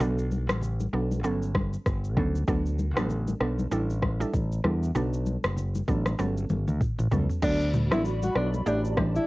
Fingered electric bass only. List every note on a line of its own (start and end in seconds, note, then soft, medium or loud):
0.00 0.49 B1 loud
0.49 0.86 A1 medium
0.93 1.24 B1 medium
1.24 1.75 G1 loud
1.86 2.17 G1 medium
2.17 2.42 D2 medium
2.48 2.97 D2 loud
2.97 3.33 A1 medium
3.41 3.66 B1 medium
3.71 4.23 A1 loud
4.33 4.59 A1 medium
4.64 4.90 E2 medium
4.95 5.36 B1 loud
5.44 5.80 F#1 medium
5.88 6.13 A1 medium
6.19 6.45 G1 loud
6.50 6.65 G1 medium
6.68 6.79 D2 medium
6.99 7.09 A1 medium
7.12 7.26 C#2 medium
7.43 7.92 D2 loud
7.92 8.28 A1 medium
8.35 8.61 B1 loud
8.66 9.17 A1 loud